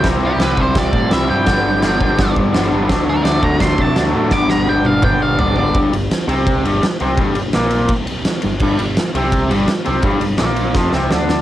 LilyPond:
<<
  \new Staff \with { instrumentName = "Lead electric guitar" } { \time 4/4 \key g \major \tempo 4 = 168 r8 g'8 b'8 c''8 d''4 e''8 g''8~ | g''2~ g''8 r4. | r8 bes'8 d''8 bes''8 c'''8 a''8 r4 | d'''8 bes''8 g''8 f''8 g''8 f''8 d''8 d''8 |
\key c \major r1 | r1 | r1 | r1 | }
  \new Staff \with { instrumentName = "Overdriven electric guitar" } { \clef bass \time 4/4 \key g \major <c g c' e'>4 <c g c' e'>8 <c g c' e'>8 <c g c' e'>4 <c g c' e'>8 <c g c' e'>8 | <g, d g b d'>4 <g, d g b d'>8 <g, d g b d'>8 <g, d g b d'>4 <g, d g b d'>8 <g, d g b d'>8 | <d fis a d'>4 <d fis a d'>8 <d fis a d'>8 <d fis a d'>4 <d fis a d'>8 <d fis a d'>8 | <g, d g b d'>4 <g, d g b d'>8 <g, d g b d'>8 <g, d g b d'>4 <g, d g b d'>8 <g, d g b d'>8 |
\key c \major <g, g>8 g,8 r8 <c c'>4 <g, g>8 r8 <c c'>8 | <g, g>8 g,8 <bes, bes>4 r4. g,8 | <g, g>8 g,8 r8 <c c'>4 <g, g>8 r8 <c c'>8 | <g, g>8 g,8 <bes, bes>4 <f, f>8 <c c'>8 <d d'>4 | }
  \new Staff \with { instrumentName = "Picked electric bass" } { \clef bass \time 4/4 \key g \major c,8 c,8 c,8 c,8 c,8 a,8 c,8 g,8 | g,,4 g,,4 g,,8 g,,8 g,,8 g,,8 | d,8 d,8 d,8 d,8 d,8 c8 d,8 a,8 | g,,4 g,,4 g,,8 g,,8 g,,8 g,,8 |
\key c \major g,,8 g,,8 r8 c,4 g,,8 r8 c,8 | g,,8 g,,8 bes,,4 r4. g,,8 | g,,8 g,,8 r8 c,4 g,,8 r8 c,8 | g,,8 g,,8 bes,,4 f,,8 c,8 d,4 | }
  \new DrumStaff \with { instrumentName = "Drums" } \drummode { \time 4/4 <cymc bd sn>4 <cymc sn>8 bd8 <cymc bd sn>8 bd8 <cymc sn>4 | <cymc bd sn>4 <cymc sn>8 bd8 <cymc bd sn>8 bd8 <cymc sn>4 | <cymc bd sn>4 <cymc sn>8 bd8 <cymc bd sn>8 bd8 <cymc sn>4 | <bd sn>8 sn8 r8 tommh8 <bd toml>4 tomfh8 tomfh8 |
<bd cymr>8 cymr8 <cymr sn>8 cymr8 <bd cymr>8 cymr8 <cymr sn>8 cymr8 | <bd cymr>8 cymr8 <cymr sn>8 cymr8 <bd cymr>8 cymr8 <cymr sn>8 cymr8 | <cymc bd>8 cymr8 <cymr sn>8 cymr8 <bd cymr>8 cymr8 <cymr sn>8 cymr8 | <bd cymr>8 cymr8 <cymr sn>8 cymr8 <bd sn>8 sn8 sn8 sn8 | }
>>